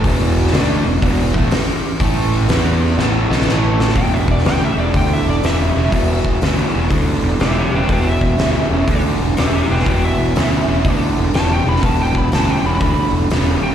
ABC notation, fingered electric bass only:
X:1
M:4/4
L:1/8
Q:"Swing" 1/4=122
K:Em
V:1 name="Fingered electric bass" clef=bass
E,,,2 D,, E,,, E,,, A,,, z2 | A,,,2 E,,2 A,,, B,,, A,,,2 | E,,, E,,, D,, E,,, D,, E,,, E,,, E,,, | E,,, E,,, D,, E,,, D,, E,,, E,,, E,,, |
E,,, E,,, D,, E,,, D,, E,,, E,,, E,,, | E,,, E,,, D,, E,,, D,, E,,, E,,, E,,, | E,,, E,,, D,, E,,, D,, E,,, E,,, E,,, |]